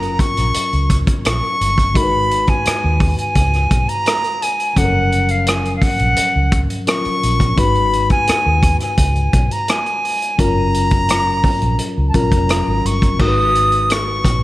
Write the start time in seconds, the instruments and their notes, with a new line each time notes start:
Already playing: fingered electric bass F#1, tine electric piano F#3 C#4 F4 A#4, flute A#5
0.03 closed hi-hat
0.19 flute C#6, muted fingered electric bass stroke, kick, closed hi-hat
0.37 fingered electric bass A#1, cross-stick, closed hi-hat
0.54 closed hi-hat
0.73 fingered electric bass C#2, closed hi-hat
0.90 kick, closed hi-hat
1.07 kick, closed hi-hat
1.25 fingered electric bass A#1, flute C#6, cross-stick, closed hi-hat
1.61 fingered electric bass G1, closed hi-hat
1.78 kick, closed hi-hat
1.94 fingered electric bass G#1, tine electric piano G#3 D#4 F#4 A#4, flute B5, kick, closed hi-hat
2.03 tine electric piano B4
2.31 closed hi-hat
2.47 flute G#5, kick, closed hi-hat
2.65 muted fingered electric bass stroke, cross-stick, closed hi-hat
2.84 fingered electric bass D#2
3.00 kick, open hi-hat
3.18 flute G#5, closed hi-hat
3.35 fingered electric bass C#2, kick, closed hi-hat
3.53 cross-stick, closed hi-hat
3.71 fingered electric bass B1, kick, closed hi-hat
3.89 flute A#5, closed hi-hat
4.06 cross-stick, closed hi-hat
4.24 closed hi-hat
4.42 flute G#5, closed hi-hat
4.60 closed hi-hat
4.76 fingered electric bass F#1, tine electric piano F3 F#3 C#4 A4, flute F#5, kick, closed hi-hat
4.84 tine electric piano A#4
5.12 closed hi-hat
5.29 flute F5, closed hi-hat
5.47 flute G#5, cross-stick, closed hi-hat
5.65 closed hi-hat
5.76 flute F5
5.82 flute F#5, muted fingered electric bass stroke, kick, open hi-hat
5.99 fingered electric bass A#1, closed hi-hat
6.16 muted fingered electric bass stroke, closed hi-hat
6.36 fingered electric bass C#2
6.52 kick, closed hi-hat
6.70 closed hi-hat
6.87 tine electric piano F#3 C#4 F4 A#4, flute C#6, cross-stick, closed hi-hat
7.05 muted fingered electric bass stroke, closed hi-hat
7.23 fingered electric bass A#1, closed hi-hat
7.40 kick, closed hi-hat
7.56 fingered electric bass G#1, tine electric piano G#3 D#4 F#4 B4, flute B5, kick, closed hi-hat
7.75 closed hi-hat
7.93 closed hi-hat
8.10 flute G#5, kick, closed hi-hat
8.27 muted fingered electric bass stroke, cross-stick, closed hi-hat
8.46 fingered electric bass D#2
8.63 kick, closed hi-hat
8.80 flute G#5, cross-stick, closed hi-hat
8.97 fingered electric bass C#2, kick, closed hi-hat
9.15 closed hi-hat
9.33 fingered electric bass B1, kick, closed hi-hat
9.51 flute A#5, closed hi-hat
9.68 flute G#5, cross-stick, closed hi-hat
9.86 closed hi-hat
10.05 open hi-hat
10.22 closed hi-hat
10.38 fingered electric bass F#1, tine electric piano F#3 C#4 F4 A#4, flute A#5, kick, closed hi-hat
10.74 closed hi-hat
10.91 kick, closed hi-hat
11.09 cross-stick, closed hi-hat
11.44 muted fingered electric bass stroke, kick, open hi-hat
11.62 fingered electric bass A#1, closed hi-hat
11.79 closed hi-hat
11.98 fingered electric bass C#2
12.09 flute A5
12.14 fingered electric bass A#1, tine electric piano F#3 C#4 F4 A#4, flute A#5, kick, closed hi-hat
12.32 fingered electric bass F1, kick, closed hi-hat
12.49 cross-stick, closed hi-hat
12.68 fingered electric bass G#1
12.85 fingered electric bass G1, flute C#6, closed hi-hat
13.02 kick, closed hi-hat
13.19 fingered electric bass G#1, tine electric piano G#3 D#4 F#4 A#4, flute D#6, kick, crash
13.28 tine electric piano B4
13.55 closed hi-hat
13.72 closed hi-hat
13.90 flute C#6, cross-stick, closed hi-hat
14.25 fingered electric bass A#1, kick, closed hi-hat